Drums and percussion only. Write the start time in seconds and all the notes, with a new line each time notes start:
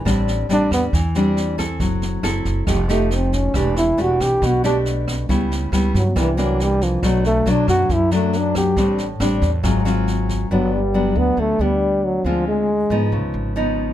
0.06 kick, cross-stick, snare
0.28 snare
0.49 snare
0.71 kick, cross-stick, snare
0.93 kick, snare
1.15 snare
1.37 snare
1.58 kick, cross-stick, snare
1.80 kick, snare
2.02 snare
2.23 cross-stick, snare
2.45 kick, snare
2.67 kick, cross-stick, snare
2.89 snare
3.11 snare
3.32 kick, snare
3.54 kick, cross-stick, snare
3.76 snare
3.98 snare
4.20 kick, cross-stick, snare
4.42 kick, snare
4.64 snare
4.85 snare
5.07 kick, cross-stick, snare
5.29 kick, snare
5.51 snare
5.73 cross-stick, snare
5.94 kick, snare
6.16 kick, cross-stick, snare
6.38 snare
6.60 snare
6.81 kick, snare
7.03 kick, cross-stick, snare
7.24 snare
7.46 snare
7.68 kick, cross-stick, snare
7.89 kick, snare
8.11 snare
8.33 snare
8.55 kick, cross-stick, snare
8.77 kick, snare
8.98 snare
9.20 cross-stick, snare
9.42 kick, snare
9.64 kick, cross-stick, snare
9.86 snare
10.07 snare
10.29 kick, snare